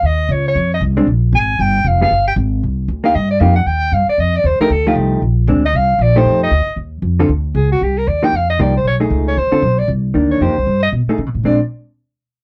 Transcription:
X:1
M:4/4
L:1/8
Q:"Swing" 1/4=232
K:Bbmix
V:1 name="Soprano saxophone"
e2 _d d2 e z2 | z2 a2 g2 f f- | f g z4 z f | e d f _g =g2 f d |
e d c B =A F z2 | z3 e f2 d c- | c e3 z4 | z2 ^G ^F =G B d g |
f e d c ^c z2 c | c3 d z3 _d | c3 e z4 | d z6 z |]
V:2 name="Hollow-body jazz guitar"
z6 z [A,CD] | z6 z [G,_CFA] | z6 z [B,EG] | z2 [B,EG] z4 z |
z3 [F,=A,EG] z [F,A,EG]3 | z2 [A,CD] z4 [F,=A,EG]- | [F,=A,EG]2 z4 z [D,CF=A] | z6 z [F,B,EG] |
z2 [F,B,EG] z2 [=A,^D^G]3 | z [D,CF=A] z4 [E,B,D]2 | [F,B,EG] z4 [=A,^D^G] z2 | [A,CD] z6 z |]
V:3 name="Upright bass" clef=bass
E,,2 _D,,2 F,,2 C,,2 | B,,,2 A,,,2 G,,,2 F,,,2 | G,,,2 A,,,2 C,,2 D,,2 | G,,2 F,,2 E,,2 G,, z |
F,,2 E,, z D,,2 C,,2 | B,,,2 D,,2 C,,2 B,,,2 | F,,2 D,, z E,,2 F,,2 | D,,2 ^C,,2 =C,,2 E,,2 |
F,,2 C,,2 =B,,,2 ^C,,2 | D,, z _C,,2 =C,,2 D,,2 | (3F,, E,, C,, G,,2 =B,, z (3^C, B,, =A,, | B,,, z6 z |]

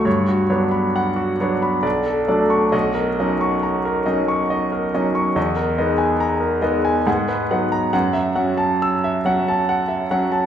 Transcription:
X:1
M:3/4
L:1/16
Q:1/4=69
K:Bm
V:1 name="Grand piano"
c F c b f F c b d A d c' | ^d ^A d c' ^a A d c' d A d c' | ^d ^A d ^g ^a A d g f B f a | f e f a e' e f a f e f a |]
V:2 name="Grand piano"
G,,2 [F,B,D]4 [F,B,D]2 B,,,2 [F,A,D]2 | B,,,2 [F,C^D]4 [F,CD]4 [F,CD]2 | E,,2 [^G,B,^D]4 [G,B,D]2 ^G,,2 [F,B,D]2 | F,,2 [F,C]4 [F,C]4 [F,C]2 |]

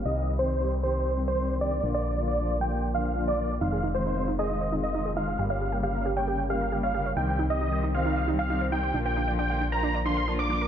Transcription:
X:1
M:4/4
L:1/16
Q:1/4=135
K:Cphr
V:1 name="Supersaw synth"
e2 z c3 z c3 z c2 z =d2 | z =d2 z d2 z g2 z f2 z d2 z | f2 z c3 z e3 z e2 z f2 | z f2 z f2 z g2 z f2 z f2 z |
g2 z e3 z f3 z f2 z g2 | z g2 z g2 z b2 z c'2 z =d'2 z |]
V:2 name="Synth pluck"
e2 z c3 z c3 z c2 z =d2 | z =d2 z d2 z g2 z f2 z d2 z | f2 z c3 z e3 z e2 z f2 | z f2 z f2 z g2 z f2 z f2 z |
g2 z e3 z f3 z f2 z g2 | z g2 z g2 z b2 z c'2 z =d'2 z |]
V:3 name="Synth arpeggio sound"
z16 | z16 | E A E c E e E A E c E e E A E A | G d G g G b G d G g G b G d G d |
E c E e E g E c E e E g E c E c | =D B D =d D f D B D d D f D B D B |]
V:4 name="String section"
[E,G,CG]2 z [E,G,CG]2 [E,G,CG]2 [E,G,CG]2 z [E,G,CG]2 [E,G,CG]2 [E,G,CG]2 | [=D,F,B,F]2 z [D,F,B,F]2 [D,F,B,F]2 [D,F,B,F]2 z [D,F,B,F]2 [D,F,B,F]2 [D,F,B,F]2 | [E,A,CF]2 z [E,A,CF]2 [E,A,CF]2 [E,A,CF]2 z [E,A,CF]2 [E,A,CF]2 [E,A,CF]2 | [D,G,B,G]2 z [D,G,B,G]2 [D,G,B,G]2 [D,G,B,G]2 z [D,G,B,G]2 [D,G,B,G]2 [D,G,B,G]2 |
[E,G,CG]2 z [E,G,CG]2 [E,G,CG]2 [E,G,CG]2 z [E,G,CG]2 [E,G,CG]2 [E,G,CG]2 | [=D,F,B,F]2 z [D,F,B,F]2 [D,F,B,F]2 [D,F,B,F]2 z [D,F,B,F]2 [D,F,B,F]2 [D,F,B,F]2 |]
V:5 name="FM bass" clef=bass
C,,16 | B,,,16 | F,,,16 | G,,,16 |
C,,16 | B,,,16 |]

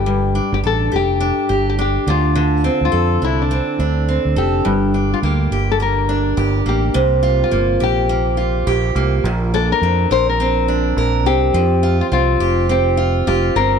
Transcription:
X:1
M:4/4
L:1/16
Q:"Swing 16ths" 1/4=104
K:Gdor
V:1 name="Nylon-string guitar"
G3 G A2 G4- G G G2 F2- | F3 F3 E D6- D G2- | G3 F G3 A B6 G2- | G3 F3 G6 z4 |
z2 A B3 c B6- B G2- | G3 F F4 G4 F2 B2 |]
V:2 name="Steel-string acoustic guitar"
G,,2 D2 A2 G2 D2 G2 D2 D,2 | D,2 C2 A2 D2 C2 D2 C2 A2 | G,,2 D2 B,2 G2 B,2 D2 G2 B,2 | C,2 F2 B,2 G2 B,2 F2 G2 B,2 |
B,,2 D2 C2 B2 C2 D2 B2 C2 | F,2 F2 C2 G2 C2 F2 G2 C2 |]
V:3 name="Fingered electric bass" clef=bass
G,,,3 G,,, A,,,2 F,,,3 z G,,,4 D,,2- | D,,3 D,, F,,2 C,,3 z D,,3 D,, F,,,2 | G,,,4 D,,2 G,,,6 G,,,2 A,,,2 | C,,4 G,,,2 B,,,6 B,,,2 C,,2 |
B,,,4 F,,2 B,,,6 B,,,2 C,,2 | F,,4 C,,2 F,,,6 F,,,2 G,,,2 |]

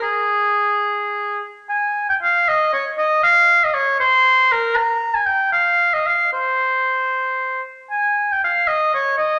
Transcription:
X:1
M:6/8
L:1/16
Q:3/8=77
K:Cphr
V:1 name="Oboe"
A8- A2 z2 | [K:Fm] a3 g f2 e2 d2 e2 | f3 e d2 c4 B2 | b3 a g2 f3 e f2 |
c8- c2 z2 | a3 g f2 e2 d2 e2 |]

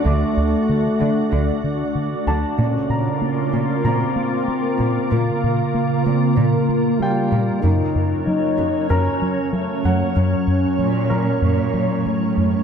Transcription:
X:1
M:4/4
L:1/16
Q:1/4=95
K:Bb
V:1 name="Grand piano"
[c'd']12 z2 a2- | a2 b6 b8- | b4 z8 [Fg]4- | [Fg]8 [^A^a]6 ^f2- |
^f6 [^A^a]8- [Aa]2 |]
V:2 name="Ambient pad"
[A,D^Fd]16 | [_D,B,FB]16- | [_D,B,FB]16 | [^F,^C^c]16- |
[^F,^C^c]16 |]
V:3 name="French horn section"
A,12 z4 | _D4 D4 C8 | B,6 C2 B,4 G,4 | E4 E4 ^C4 A,3 ^A, |
^C12- C2 z2 |]
V:4 name="Analog synth bass" clef=bass
D,,2 D,,2 D,2 D,2 D,,2 D,2 D,2 D,,2 | B,,2 B,,2 B,2 B,2 B,,2 B,2 B,2 B,,2 | B,,2 B,,2 B,2 B,2 B,,2 B,2 B,2 B,,2 | ^F,,2 F,,2 ^F,2 F,2 F,,2 F,2 F,2 F,,2 |
^F,,2 F,,2 ^F,2 F,2 F,,2 F,2 F,2 F,,2 |]
V:5 name="Cello section" clef=bass
D,2 z4 D,2 D,2 z4 D,2 | B,,2 z4 B,,2 B,,2 z4 B,,2 | B,,2 z4 B,,2 B,,2 z4 B,,2 | ^F,,2 z4 F,,2 F,,2 z4 F,,2 |
^F,,2 z2 ^A,,4 A,,4 =A,,4 |]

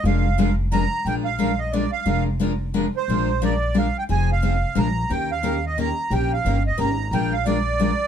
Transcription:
X:1
M:3/4
L:1/16
Q:"Swing" 1/4=178
K:Bbmix
V:1 name="Accordion"
f6 z2 b4 | g2 f4 e2 d2 f2- | f2 z8 c2- | c4 d4 f2 g2 |
a2 f6 b4 | g2 f4 e2 b4 | g2 f4 e2 b4 | g2 f2 d8 |]
V:2 name="Steel-string acoustic guitar"
[F,A,DFB]2 z2 [F,A,DFB] z3 [F,A,DFB] z3 | [F,A,DFB]2 z2 [F,A,DFB] z3 [F,A,DFB] z3 | [F,A,DFB]2 z2 [F,A,DFB] z3 [F,A,DFB] z3 | [F,A,DFB]2 z2 [F,A,DFB] z3 [F,A,DFB] z3 |
[F,CEA]2 z2 [F,CEA] z3 [F,A,DFB] z3 | [E,B,_DGB]2 z2 [E,B,DGB] z3 [E,B,DGB] z3 | [E,B,_DGB]2 z2 [E,B,DGB] z3 [E,B,DGB] z3 | [F,A,DFB]2 z2 [F,A,DFB] z3 [F,A,DFB] z3 |]
V:3 name="Upright bass" clef=bass
F,,,12 | B,,,12 | F,,,12 | B,,,12 |
F,,,8 B,,,4 | E,,12 | B,,,4 G,,,4 A,,,4 | B,,,12 |]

